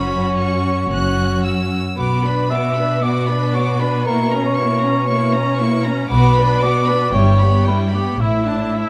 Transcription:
Already playing: double bass section F#1, cello section F#2, viola section C#4, violin section F#4 B5, cor anglais C#5
0.38 violin section C#6
0.91 double bass section F#1, cello section F#2, viola section C#4, violin section F#4 F#6
1.46 violin section E6
1.97 double bass section B1, cello section B2, viola section B3, violin section F#4 D6, cor anglais B4
2.24 viola section D4, violin section B4 B5
2.50 viola section B3, violin section F#4 D6, cor anglais E5
2.76 viola section D4, violin section B4 B5
3.02 viola section B3, violin section F#4 D6, cor anglais D5
3.28 viola section D4, violin section B4 B5
3.54 viola section B3, violin section F#4 D6, cor anglais C#5
3.80 viola section D4, violin section B4 B5, cor anglais B4
4.05 viola section A#3, violin section E4 C#6, cor anglais A#4
4.32 viola section C#4, violin section C#4 A#5
4.46 cor anglais C#5
4.57 viola section A#3, violin section E4 C#6
4.83 viola section C#4, violin section C#4 A#5
5.08 viola section A#3, violin section E4 C#6
5.34 viola section C#4, violin section C#4 A#5
5.59 viola section A#3, violin section E4 C#6
5.85 viola section C#4, violin section C#4 A#5
6.10 double bass section B1, cello section B2, viola section B3, violin section F#4 D6, cor anglais B4
6.36 viola section D4, violin section B4 B5
6.62 viola section B3, violin section F#4 D6, cor anglais D5
6.87 viola section D4, violin section B4 B5
7.14 double bass section G1, cello section G2, viola section G3, violin section E4 G5, cor anglais C#5
7.39 viola section B3, violin section G4 B5
7.66 viola section G3, violin section E4 G5, cor anglais B4
7.93 viola section B3, violin section G4 B5, cor anglais G4
8.19 double bass section A1, cello section A2, viola section E4, violin section E4 E5, cor anglais E4
8.46 viola section D4, violin section D4 A5
8.73 viola section E4, violin section E4 E5

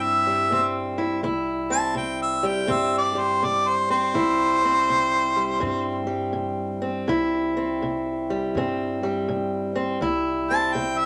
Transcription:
Already playing: upright bass G2, steel-string acoustic guitar C3 G3 C4 E4
0.03 harmonica E5
0.27 steel-string acoustic guitar G3
0.51 steel-string acoustic guitar C3 C4
0.98 steel-string acoustic guitar E4
1.23 upright bass C2, steel-string acoustic guitar C3 E4
1.70 steel-string acoustic guitar C4, harmonica A5
1.95 steel-string acoustic guitar C3, harmonica G5
2.22 harmonica E5
2.43 steel-string acoustic guitar G3
2.47 harmonica G5
2.67 upright bass G2, steel-string acoustic guitar C3 C4
2.72 harmonica E5
2.98 harmonica D5
3.15 steel-string acoustic guitar G3
3.19 harmonica C5
3.43 steel-string acoustic guitar C3, harmonica D5
3.67 harmonica C5
3.90 steel-string acoustic guitar C4, harmonica C5
4.14 upright bass C2, steel-string acoustic guitar C3 E4
4.65 steel-string acoustic guitar C4
4.89 steel-string acoustic guitar C3
5.36 steel-string acoustic guitar G3
5.60 upright bass G2, steel-string acoustic guitar C3 C4
6.07 steel-string acoustic guitar G3
6.33 steel-string acoustic guitar C3
6.82 steel-string acoustic guitar C4
7.08 upright bass C2, steel-string acoustic guitar C3 E4
7.57 steel-string acoustic guitar C4
7.82 steel-string acoustic guitar C3
8.30 steel-string acoustic guitar G3
8.55 upright bass G2, steel-string acoustic guitar C3 C4
9.03 steel-string acoustic guitar G3
9.28 steel-string acoustic guitar C3
9.75 steel-string acoustic guitar C4
10.01 upright bass C2, steel-string acoustic guitar C3 E4
10.50 steel-string acoustic guitar C4, harmonica A5
10.74 steel-string acoustic guitar C3, harmonica G5
10.99 harmonica E5

